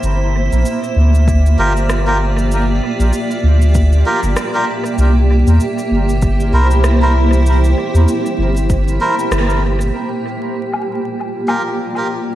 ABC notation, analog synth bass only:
X:1
M:4/4
L:1/16
Q:"Swing 16ths" 1/4=97
K:Gdor
V:1 name="Analog synth bass" clef=bass
G,,,3 B,,, z2 D,,4 G,,,6- | G,,,2 z B,,, z2 D,,4 z G,,, z4 | C,,3 E,, z2 G,,,4 C,,6- | C,,2 z E,, z2 G,,,4 z2 G,,,4 |
z16 |]